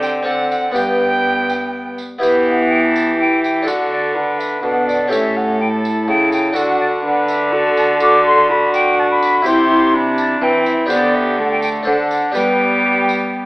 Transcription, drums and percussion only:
0, 0, Header, 1, 2, 480
1, 0, Start_track
1, 0, Tempo, 484262
1, 746, Time_signature, 3, 2, 24, 8
1, 13338, End_track
2, 0, Start_track
2, 0, Title_t, "Drums"
2, 25, Note_on_c, 9, 54, 50
2, 124, Note_off_c, 9, 54, 0
2, 512, Note_on_c, 9, 54, 47
2, 611, Note_off_c, 9, 54, 0
2, 751, Note_on_c, 9, 54, 67
2, 850, Note_off_c, 9, 54, 0
2, 1483, Note_on_c, 9, 54, 47
2, 1582, Note_off_c, 9, 54, 0
2, 1965, Note_on_c, 9, 54, 42
2, 2064, Note_off_c, 9, 54, 0
2, 2209, Note_on_c, 9, 54, 72
2, 2308, Note_off_c, 9, 54, 0
2, 2931, Note_on_c, 9, 54, 57
2, 3030, Note_off_c, 9, 54, 0
2, 3412, Note_on_c, 9, 54, 48
2, 3512, Note_off_c, 9, 54, 0
2, 3645, Note_on_c, 9, 54, 85
2, 3744, Note_off_c, 9, 54, 0
2, 4365, Note_on_c, 9, 54, 54
2, 4464, Note_off_c, 9, 54, 0
2, 4846, Note_on_c, 9, 54, 49
2, 4945, Note_off_c, 9, 54, 0
2, 5080, Note_on_c, 9, 54, 80
2, 5179, Note_off_c, 9, 54, 0
2, 5800, Note_on_c, 9, 54, 52
2, 5899, Note_off_c, 9, 54, 0
2, 6267, Note_on_c, 9, 54, 51
2, 6366, Note_off_c, 9, 54, 0
2, 6501, Note_on_c, 9, 54, 84
2, 6601, Note_off_c, 9, 54, 0
2, 7219, Note_on_c, 9, 54, 55
2, 7318, Note_off_c, 9, 54, 0
2, 7703, Note_on_c, 9, 54, 47
2, 7802, Note_off_c, 9, 54, 0
2, 7934, Note_on_c, 9, 54, 78
2, 8033, Note_off_c, 9, 54, 0
2, 8662, Note_on_c, 9, 54, 60
2, 8761, Note_off_c, 9, 54, 0
2, 9144, Note_on_c, 9, 54, 50
2, 9243, Note_off_c, 9, 54, 0
2, 9377, Note_on_c, 9, 54, 73
2, 9476, Note_off_c, 9, 54, 0
2, 10088, Note_on_c, 9, 54, 56
2, 10187, Note_off_c, 9, 54, 0
2, 10569, Note_on_c, 9, 54, 46
2, 10668, Note_off_c, 9, 54, 0
2, 10804, Note_on_c, 9, 54, 78
2, 10903, Note_off_c, 9, 54, 0
2, 11521, Note_on_c, 9, 54, 58
2, 11620, Note_off_c, 9, 54, 0
2, 12002, Note_on_c, 9, 54, 50
2, 12101, Note_off_c, 9, 54, 0
2, 12239, Note_on_c, 9, 54, 76
2, 12338, Note_off_c, 9, 54, 0
2, 12973, Note_on_c, 9, 54, 56
2, 13072, Note_off_c, 9, 54, 0
2, 13338, End_track
0, 0, End_of_file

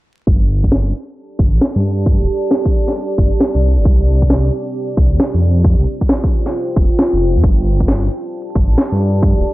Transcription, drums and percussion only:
0, 0, Header, 1, 2, 480
1, 0, Start_track
1, 0, Tempo, 447761
1, 291, Time_signature, 4, 2, 24, 8
1, 10223, End_track
2, 0, Start_track
2, 0, Title_t, "Drums"
2, 290, Note_on_c, 9, 36, 111
2, 397, Note_off_c, 9, 36, 0
2, 685, Note_on_c, 9, 36, 57
2, 769, Note_on_c, 9, 38, 107
2, 793, Note_off_c, 9, 36, 0
2, 876, Note_off_c, 9, 38, 0
2, 1490, Note_on_c, 9, 36, 99
2, 1597, Note_off_c, 9, 36, 0
2, 1730, Note_on_c, 9, 38, 107
2, 1837, Note_off_c, 9, 38, 0
2, 2210, Note_on_c, 9, 36, 116
2, 2317, Note_off_c, 9, 36, 0
2, 2690, Note_on_c, 9, 38, 113
2, 2797, Note_off_c, 9, 38, 0
2, 2845, Note_on_c, 9, 36, 102
2, 2953, Note_off_c, 9, 36, 0
2, 3085, Note_on_c, 9, 38, 59
2, 3192, Note_off_c, 9, 38, 0
2, 3410, Note_on_c, 9, 36, 102
2, 3517, Note_off_c, 9, 36, 0
2, 3649, Note_on_c, 9, 38, 115
2, 3757, Note_off_c, 9, 38, 0
2, 4130, Note_on_c, 9, 36, 118
2, 4237, Note_off_c, 9, 36, 0
2, 4525, Note_on_c, 9, 36, 60
2, 4609, Note_on_c, 9, 38, 117
2, 4632, Note_off_c, 9, 36, 0
2, 4716, Note_off_c, 9, 38, 0
2, 5330, Note_on_c, 9, 36, 106
2, 5437, Note_off_c, 9, 36, 0
2, 5570, Note_on_c, 9, 38, 114
2, 5677, Note_off_c, 9, 38, 0
2, 6050, Note_on_c, 9, 36, 115
2, 6158, Note_off_c, 9, 36, 0
2, 6446, Note_on_c, 9, 36, 59
2, 6530, Note_on_c, 9, 38, 114
2, 6553, Note_off_c, 9, 36, 0
2, 6638, Note_off_c, 9, 38, 0
2, 6686, Note_on_c, 9, 36, 101
2, 6793, Note_off_c, 9, 36, 0
2, 6926, Note_on_c, 9, 38, 59
2, 7033, Note_off_c, 9, 38, 0
2, 7251, Note_on_c, 9, 36, 103
2, 7358, Note_off_c, 9, 36, 0
2, 7490, Note_on_c, 9, 38, 113
2, 7598, Note_off_c, 9, 38, 0
2, 7971, Note_on_c, 9, 36, 115
2, 8078, Note_off_c, 9, 36, 0
2, 8366, Note_on_c, 9, 36, 58
2, 8450, Note_on_c, 9, 38, 111
2, 8473, Note_off_c, 9, 36, 0
2, 8557, Note_off_c, 9, 38, 0
2, 9170, Note_on_c, 9, 36, 100
2, 9277, Note_off_c, 9, 36, 0
2, 9410, Note_on_c, 9, 38, 109
2, 9517, Note_off_c, 9, 38, 0
2, 9890, Note_on_c, 9, 36, 109
2, 9997, Note_off_c, 9, 36, 0
2, 10223, End_track
0, 0, End_of_file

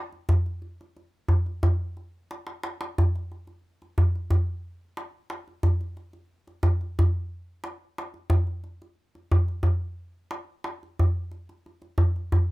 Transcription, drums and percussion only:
0, 0, Header, 1, 2, 480
1, 0, Start_track
1, 0, Tempo, 667408
1, 220, Time_signature, 4, 2, 24, 8
1, 9000, End_track
2, 0, Start_track
2, 0, Title_t, "Darbuka"
2, 90, Note_on_c, 9, 62, 23
2, 162, Note_off_c, 9, 62, 0
2, 207, Note_on_c, 9, 64, 76
2, 279, Note_off_c, 9, 64, 0
2, 331, Note_on_c, 9, 62, 20
2, 403, Note_off_c, 9, 62, 0
2, 445, Note_on_c, 9, 62, 23
2, 517, Note_off_c, 9, 62, 0
2, 581, Note_on_c, 9, 62, 22
2, 653, Note_off_c, 9, 62, 0
2, 694, Note_on_c, 9, 62, 21
2, 766, Note_off_c, 9, 62, 0
2, 924, Note_on_c, 9, 64, 73
2, 996, Note_off_c, 9, 64, 0
2, 1051, Note_on_c, 9, 62, 23
2, 1123, Note_off_c, 9, 62, 0
2, 1171, Note_on_c, 9, 64, 77
2, 1243, Note_off_c, 9, 64, 0
2, 1415, Note_on_c, 9, 62, 23
2, 1487, Note_off_c, 9, 62, 0
2, 1660, Note_on_c, 9, 63, 47
2, 1732, Note_off_c, 9, 63, 0
2, 1774, Note_on_c, 9, 62, 60
2, 1846, Note_off_c, 9, 62, 0
2, 1895, Note_on_c, 9, 63, 67
2, 1967, Note_off_c, 9, 63, 0
2, 2019, Note_on_c, 9, 62, 79
2, 2091, Note_off_c, 9, 62, 0
2, 2146, Note_on_c, 9, 64, 76
2, 2218, Note_off_c, 9, 64, 0
2, 2269, Note_on_c, 9, 62, 25
2, 2341, Note_off_c, 9, 62, 0
2, 2385, Note_on_c, 9, 62, 27
2, 2457, Note_off_c, 9, 62, 0
2, 2498, Note_on_c, 9, 62, 23
2, 2570, Note_off_c, 9, 62, 0
2, 2746, Note_on_c, 9, 62, 23
2, 2818, Note_off_c, 9, 62, 0
2, 2861, Note_on_c, 9, 64, 79
2, 2933, Note_off_c, 9, 64, 0
2, 2987, Note_on_c, 9, 62, 22
2, 3059, Note_off_c, 9, 62, 0
2, 3096, Note_on_c, 9, 64, 78
2, 3168, Note_off_c, 9, 64, 0
2, 3575, Note_on_c, 9, 63, 56
2, 3647, Note_off_c, 9, 63, 0
2, 3812, Note_on_c, 9, 63, 58
2, 3883, Note_off_c, 9, 63, 0
2, 3938, Note_on_c, 9, 62, 20
2, 4010, Note_off_c, 9, 62, 0
2, 4050, Note_on_c, 9, 64, 72
2, 4122, Note_off_c, 9, 64, 0
2, 4177, Note_on_c, 9, 62, 22
2, 4248, Note_off_c, 9, 62, 0
2, 4293, Note_on_c, 9, 62, 24
2, 4365, Note_off_c, 9, 62, 0
2, 4411, Note_on_c, 9, 62, 22
2, 4483, Note_off_c, 9, 62, 0
2, 4656, Note_on_c, 9, 62, 24
2, 4728, Note_off_c, 9, 62, 0
2, 4768, Note_on_c, 9, 64, 80
2, 4840, Note_off_c, 9, 64, 0
2, 4897, Note_on_c, 9, 62, 22
2, 4969, Note_off_c, 9, 62, 0
2, 5026, Note_on_c, 9, 64, 82
2, 5098, Note_off_c, 9, 64, 0
2, 5492, Note_on_c, 9, 63, 59
2, 5564, Note_off_c, 9, 63, 0
2, 5742, Note_on_c, 9, 63, 60
2, 5814, Note_off_c, 9, 63, 0
2, 5853, Note_on_c, 9, 62, 25
2, 5925, Note_off_c, 9, 62, 0
2, 5967, Note_on_c, 9, 64, 90
2, 6039, Note_off_c, 9, 64, 0
2, 6092, Note_on_c, 9, 62, 24
2, 6164, Note_off_c, 9, 62, 0
2, 6212, Note_on_c, 9, 62, 27
2, 6284, Note_off_c, 9, 62, 0
2, 6341, Note_on_c, 9, 62, 26
2, 6413, Note_off_c, 9, 62, 0
2, 6581, Note_on_c, 9, 62, 26
2, 6653, Note_off_c, 9, 62, 0
2, 6699, Note_on_c, 9, 64, 87
2, 6771, Note_off_c, 9, 64, 0
2, 6821, Note_on_c, 9, 62, 26
2, 6893, Note_off_c, 9, 62, 0
2, 6926, Note_on_c, 9, 64, 78
2, 6998, Note_off_c, 9, 64, 0
2, 7413, Note_on_c, 9, 63, 63
2, 7485, Note_off_c, 9, 63, 0
2, 7654, Note_on_c, 9, 63, 69
2, 7726, Note_off_c, 9, 63, 0
2, 7788, Note_on_c, 9, 62, 25
2, 7860, Note_off_c, 9, 62, 0
2, 7907, Note_on_c, 9, 64, 75
2, 7979, Note_off_c, 9, 64, 0
2, 8137, Note_on_c, 9, 62, 27
2, 8209, Note_off_c, 9, 62, 0
2, 8265, Note_on_c, 9, 62, 24
2, 8337, Note_off_c, 9, 62, 0
2, 8387, Note_on_c, 9, 62, 24
2, 8458, Note_off_c, 9, 62, 0
2, 8499, Note_on_c, 9, 62, 25
2, 8571, Note_off_c, 9, 62, 0
2, 8614, Note_on_c, 9, 64, 80
2, 8686, Note_off_c, 9, 64, 0
2, 8746, Note_on_c, 9, 62, 24
2, 8818, Note_off_c, 9, 62, 0
2, 8862, Note_on_c, 9, 64, 79
2, 8934, Note_off_c, 9, 64, 0
2, 9000, End_track
0, 0, End_of_file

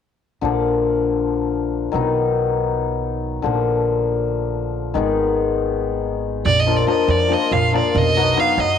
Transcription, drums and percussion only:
0, 0, Header, 1, 2, 480
1, 0, Start_track
1, 0, Tempo, 430416
1, 469, Time_signature, 7, 3, 24, 8
1, 9797, End_track
2, 0, Start_track
2, 0, Title_t, "Darbuka"
2, 7200, Note_on_c, 9, 64, 84
2, 7311, Note_off_c, 9, 64, 0
2, 7446, Note_on_c, 9, 63, 51
2, 7557, Note_off_c, 9, 63, 0
2, 7677, Note_on_c, 9, 63, 62
2, 7787, Note_off_c, 9, 63, 0
2, 7787, Note_on_c, 9, 63, 22
2, 7898, Note_off_c, 9, 63, 0
2, 7902, Note_on_c, 9, 63, 69
2, 8013, Note_off_c, 9, 63, 0
2, 8024, Note_on_c, 9, 63, 24
2, 8136, Note_off_c, 9, 63, 0
2, 8161, Note_on_c, 9, 63, 64
2, 8273, Note_off_c, 9, 63, 0
2, 8396, Note_on_c, 9, 63, 73
2, 8396, Note_on_c, 9, 64, 66
2, 8508, Note_off_c, 9, 63, 0
2, 8508, Note_off_c, 9, 64, 0
2, 8649, Note_on_c, 9, 63, 68
2, 8761, Note_off_c, 9, 63, 0
2, 8871, Note_on_c, 9, 64, 91
2, 8983, Note_off_c, 9, 64, 0
2, 9111, Note_on_c, 9, 63, 62
2, 9223, Note_off_c, 9, 63, 0
2, 9235, Note_on_c, 9, 63, 23
2, 9338, Note_off_c, 9, 63, 0
2, 9338, Note_on_c, 9, 63, 60
2, 9449, Note_off_c, 9, 63, 0
2, 9459, Note_on_c, 9, 63, 22
2, 9568, Note_off_c, 9, 63, 0
2, 9568, Note_on_c, 9, 63, 66
2, 9680, Note_off_c, 9, 63, 0
2, 9700, Note_on_c, 9, 63, 26
2, 9797, Note_off_c, 9, 63, 0
2, 9797, End_track
0, 0, End_of_file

